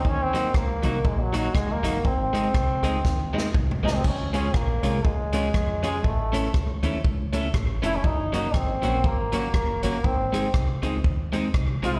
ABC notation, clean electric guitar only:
X:1
M:4/4
L:1/8
Q:"Swing" 1/4=120
K:Db
V:1 name="Clean electric guitar"
z [G,B,EG] z [G,B,EG] z [G,B,EG] z [G,B,EG] | z [A,CEA] z [A,CEA] z [A,CEA] z [A,CEA] | z [A,DFA] z [A,DFA] z [A,DFA] z [A,DFA] | z [=A,^C=E=A] z [A,CEA] z [A,CEA] z [A,CEA] |
z [G,B,DG] z [G,B,DG] z [G,B,DG] z [G,B,DG] | z [A,CEA] z [A,CEA] z [A,CEA] z [A,CEA] |]